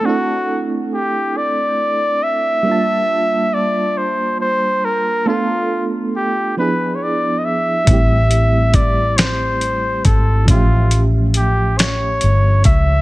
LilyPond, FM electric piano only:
\new Staff \with { instrumentName = "FM electric piano" } { \time 6/8 \key a \phrygian \tempo 4. = 46 <a c' d' e' a'>2. | <g bes d' f' a''>2. | <a b d' f' a'>4. <f b d' e' gis'>4. | <g a c' e' g'>2. |
<f a cis' g' e''>2. | }